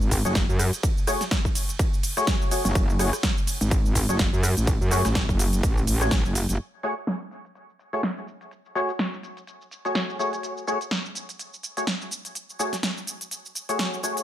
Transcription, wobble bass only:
Already playing: G#1
0.25 F#1
0.49 F#2
2.65 F#1
2.75 F#1
3.61 G#1
4.09 F#1
4.33 F#2
4.57 A1
4.81 F#2
5.05 A1
5.29 F#1
5.63 A1
5.87 A1
6.25 F#1
6.49 F#1

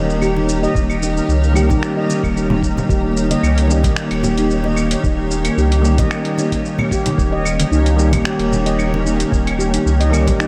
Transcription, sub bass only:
Already playing: D#1
0.75 D#1
1.29 C#2
1.70 A#1
2.23 D#1
2.89 D#1
3.43 C#2
3.84 A#1
4.11 D#1
5.04 D#1
5.57 C#2
5.99 A#1
7.18 D#1
7.71 C#2
8.13 A#1
8.39 D#1
9.32 D#1
9.86 C#2
10.27 A#1

